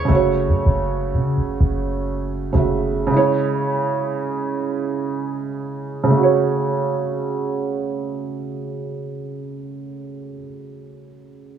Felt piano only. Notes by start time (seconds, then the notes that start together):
0.05 C#3 A3
0.12 F#4 C#5
2.53 C#3 A3 F#4
2.58 E5
3.07 C#3 G#3
3.13 E4 C#5
6.04 C#3
6.10 A3
6.17 F#4
6.23 C#5